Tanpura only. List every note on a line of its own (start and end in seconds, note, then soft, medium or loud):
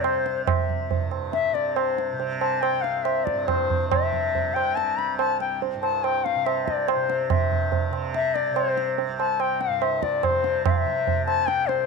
0.00 0.28 C2 medium
0.00 0.89 G2 soft
0.00 1.51 C3 medium
0.29 2.72 C2 soft
0.90 3.33 G2 medium
1.51 2.13 C3 medium
2.13 3.94 C3 medium
2.73 5.13 C2 medium
3.34 5.74 G2 medium
3.94 4.54 C3 medium
4.54 6.35 C3 medium
5.14 9.08 C2 soft
5.75 7.31 G2 medium
6.35 6.96 C3 soft
6.96 7.91 C3 soft
7.31 9.68 G2 medium
7.91 8.51 C3 medium
8.51 10.28 C3 medium
9.09 11.45 C2 medium
9.68 11.86 G2 medium
10.28 10.86 C3 medium
10.86 11.86 C3 medium
11.46 11.86 C2 medium